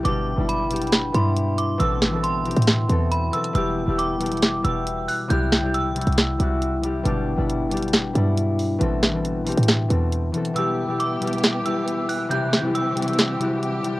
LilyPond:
<<
  \new Staff \with { instrumentName = "Synth bell" } { \time 4/4 \key e \minor \tempo 4 = 137 d'''4 b''4. c'''4 d'''8 | e'''4 c'''2 b''8 e'''8 | e'''4 d'''4. e'''4 fis'''8 | g'''4 e'''2 r4 |
r1 | r1 | e'''4 d'''4. e'''4 fis'''8 | g'''4 e'''2 r4 | }
  \new Staff \with { instrumentName = "String section" } { \time 4/4 \key e \minor << { r1 | r1 | r1 | r1 |
r1 | r1 | <b g'>1 | <c' g'>1 | } \\ { r1 | r1 | r1 | r1 |
r1 | r1 | e1~ | e1 | } >> }
  \new Staff \with { instrumentName = "Harp" } { \time 4/4 \key e \minor <b, g d' g'>8 r16 <b, g d' e'>8 r16 <b, g d' g'>8. r16 <b, g d' e'>4 r8 | <b, e c' a'>8 r16 <b, e c' a'>8 r16 <b, e c' g'>8. r16 <b, e c' a'>8. r16 <b, e c' a'>16 r16 | <b, g e' g'>8 r16 <b, g e' g'>8 r16 <b, g e' g'>8. r16 <b, g e' g'>4 r8 | <c g e' g'>8 r16 <c g e' g'>8 r16 <c g e' fis'>8. r16 <c g e' fis'>8. r16 <c g e' g'>16 r16 |
<b, g d' g'>8 r16 <b, g d' e'>8 r16 <b, g d' g'>8. r16 <b, g d' e'>4 r8 | <b, e c' a'>8 r16 <b, e c' a'>8 r16 <b, e c' g'>8. r16 <b, e c' a'>8. r16 <b, e c' a'>16 r16 | <b, g e' g'>8 r16 <b, g e' g'>8 r16 <b, g e' g'>8. r16 <b, g e' g'>4 r8 | <c g e' g'>8 r16 <c g e' g'>8 r16 <c g e' fis'>8. r16 <c g e' fis'>8. r16 <c g e' g'>16 r16 | }
  \new Staff \with { instrumentName = "808-style bass" } { \clef bass \time 4/4 \key e \minor g,,8. g,,4.~ g,,16 g,4. | a,,4.~ a,,16 a,8. e,4 r8 | e,,8. e,,4.~ e,,16 e,,4 r8 | c,4.~ c,16 c,8. c,4. |
g,,8. g,,4.~ g,,16 g,4. | a,,4.~ a,,16 a,8. e,4 r8 | r1 | r1 | }
  \new DrumStaff \with { instrumentName = "Drums" } \drummode { \time 4/4 hh4 hh8 hh32 hh32 hh32 hh32 <hh sn>8 hh8 hh8 hh8 | hh8 sn8 hh8 hh32 hh32 hh32 hh32 <hh sn>8 hh8 hh8 hh16 hh16 | hh4 hh8 hh32 hh32 hh32 hh32 <hh sn>8 hh8 hh8 hho8 | hh8 sn8 hh8 hh32 hh32 hh32 hh32 <hh sn>8 hh8 hh8 hh8 |
hh4 hh8 hh32 hh32 hh32 hh32 <hh sn>8 hh8 hh8 hho8 | hh8 sn8 hh8 <hh hho>32 hh32 hh32 hh32 <hh sn>8 hh8 hh8 hh16 hh16 | hh4 hh8 hh32 hh32 hh32 hh32 <hh sn>8 hh8 hh8 hho8 | hh8 sn8 hh8 hh32 hh32 hh32 hh32 <hh sn>8 hh8 hh8 hh8 | }
>>